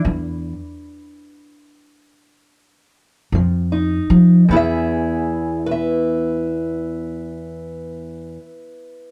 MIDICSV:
0, 0, Header, 1, 3, 480
1, 0, Start_track
1, 0, Key_signature, 4, "major"
1, 0, Tempo, 715137
1, 40, Time_signature, 12, 3, 24, 8
1, 1480, Tempo, 747198
1, 2440, Tempo, 781250
1, 5766, End_track
2, 0, Start_track
2, 0, Title_t, "Steel-string acoustic guitar"
2, 0, Program_c, 0, 25
2, 0, Note_on_c, 0, 71, 89
2, 34, Note_on_c, 0, 40, 76
2, 415, Note_off_c, 0, 40, 0
2, 2215, Note_on_c, 0, 53, 71
2, 2453, Note_on_c, 0, 63, 43
2, 2638, Note_off_c, 0, 53, 0
2, 2894, Note_off_c, 0, 63, 0
2, 2919, Note_off_c, 0, 71, 0
2, 2923, Note_on_c, 0, 40, 65
2, 2937, Note_on_c, 0, 59, 63
2, 2947, Note_on_c, 0, 64, 64
2, 2957, Note_on_c, 0, 68, 59
2, 2971, Note_on_c, 0, 76, 80
2, 3593, Note_off_c, 0, 76, 0
2, 3644, Note_off_c, 0, 68, 0
2, 3647, Note_on_c, 0, 71, 69
2, 3677, Note_on_c, 0, 76, 64
2, 5308, Note_off_c, 0, 40, 0
2, 5322, Note_off_c, 0, 59, 0
2, 5332, Note_off_c, 0, 64, 0
2, 5766, Note_off_c, 0, 71, 0
2, 5766, Note_off_c, 0, 76, 0
2, 5766, End_track
3, 0, Start_track
3, 0, Title_t, "Upright bass"
3, 0, Program_c, 1, 32
3, 31, Note_on_c, 1, 40, 91
3, 348, Note_off_c, 1, 40, 0
3, 2199, Note_on_c, 1, 41, 97
3, 2597, Note_off_c, 1, 41, 0
3, 2686, Note_on_c, 1, 53, 107
3, 2880, Note_off_c, 1, 53, 0
3, 2925, Note_on_c, 1, 40, 89
3, 5286, Note_off_c, 1, 40, 0
3, 5766, End_track
0, 0, End_of_file